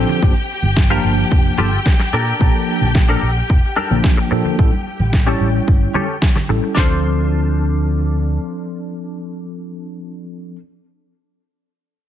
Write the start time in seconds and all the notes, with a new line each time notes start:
Already playing: F3 C4 D4 G4 A4 G5
0.08 muted clean electric guitar stroke, low conga
0.22 G1 F3 A#3 D4 G4, kick
0.62 G1, high conga, low conga
0.77 kick, snare
0.90 F3 A#3 D4 F4 G4 A#4 A5
1.04 G1
1.31 F1, muted clean electric guitar stroke, kick
1.58 G1 F4 G4 A4, high conga, low conga
1.86 kick, snare
2.00 muted clean electric guitar stroke, snare
2.13 A#2 D4 A4 A#4
2.40 A#1 F3 A#3 D4 A5, kick
2.81 A#1, high conga, low conga
2.95 kick, snare
3.09 F3 A#3 D4 A4 A#4
3.23 A#1
3.49 F1, muted clean electric guitar stroke, kick
3.76 D4 A4 A#4, high conga
3.90 A#1 F3 A#3 D4, low conga
4.04 kick, snare
4.17 muted clean electric guitar stroke
4.31 A#2 F3 A#3 D4 A4, muted clean electric guitar stroke
4.45 muted clean electric guitar stroke, low conga
4.58 A1 G3 C#4 E4 A4, kick
4.72 high conga
4.99 A1, high conga, low conga
5.13 kick, snare
5.26 G3 C#4 E4 G4 A4 C#5
5.40 A1, high conga
5.67 G1, muted clean electric guitar stroke, kick
5.94 C#4 G4 A4, high conga, low conga
6.22 kick, snare
6.36 muted clean electric guitar stroke, snare, low conga
6.49 A1 G3 C#4 E4 A4, muted clean electric guitar stroke
6.63 muted clean electric guitar stroke
6.75 D2 F3 C4 D4 F4 A4, kick, snare, clap
6.79 C5